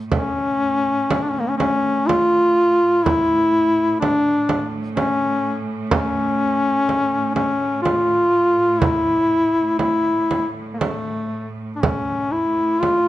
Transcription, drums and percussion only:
0.12 frame drum medium
1.11 frame drum medium
1.60 frame drum medium
2.09 frame drum medium
3.06 frame drum medium
4.02 frame drum medium
4.49 frame drum medium
4.97 frame drum medium
5.91 frame drum medium
6.89 frame drum soft
7.36 frame drum soft
7.85 frame drum soft
8.82 frame drum medium
9.79 frame drum soft
10.31 frame drum soft
10.81 frame drum medium
11.83 frame drum medium
12.83 frame drum soft

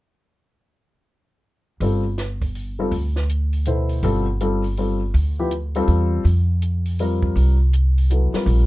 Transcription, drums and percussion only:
1.80 open hi-hat soft
2.18 snare soft
2.18 closed hi-hat soft
2.42 kick soft
2.42 open hi-hat soft
2.55 open hi-hat soft
2.92 open hi-hat soft
3.16 snare soft
3.29 closed hi-hat soft
3.53 open hi-hat soft
3.65 closed hi-hat soft
3.89 open hi-hat soft
4.03 open hi-hat soft
4.40 closed hi-hat soft
4.64 open hi-hat soft
4.77 open hi-hat soft
5.14 open hi-hat soft
5.51 closed hi-hat soft
5.75 open hi-hat soft
5.88 open hi-hat soft
6.25 open hi-hat soft
6.62 closed hi-hat soft
6.85 open hi-hat soft
6.99 open hi-hat soft
7.23 kick medium
7.36 open hi-hat soft
7.73 closed hi-hat soft
7.98 open hi-hat soft
8.10 closed hi-hat soft
8.34 snare soft
8.34 open hi-hat soft
8.47 open hi-hat soft

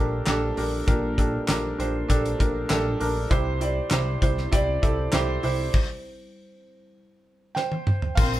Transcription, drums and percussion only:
0.26 snare loud
0.26 clap medium
0.26 closed hi-hat medium
0.57 open hi-hat medium
0.88 kick loud
0.88 closed hi-hat medium
1.18 kick medium
1.18 closed hi-hat medium
1.48 snare loud
1.48 clap medium
1.48 closed hi-hat medium
1.80 closed hi-hat medium
2.10 kick medium
2.10 closed hi-hat loud
2.25 closed hi-hat medium
2.40 kick medium
2.40 closed hi-hat medium
2.70 snare loud
2.70 clap medium
2.70 closed hi-hat medium
3.01 open hi-hat medium
3.31 kick loud
3.31 closed hi-hat medium
3.61 closed hi-hat medium
3.90 snare loud
3.90 clap medium
3.90 closed hi-hat medium
4.22 kick medium
4.22 closed hi-hat medium
4.38 snare soft
4.52 kick medium
4.52 closed hi-hat loud
4.83 kick medium
4.83 closed hi-hat medium
5.12 snare loud
5.12 clap medium
5.12 closed hi-hat medium
5.43 open hi-hat medium
5.74 kick loud
5.74 crash medium
7.56 snare medium
7.72 high tom medium
7.87 mid tom medium
8.02 floor tom medium
8.17 kick loud
8.17 crash medium
8.17 tambourine soft
8.34 tambourine medium

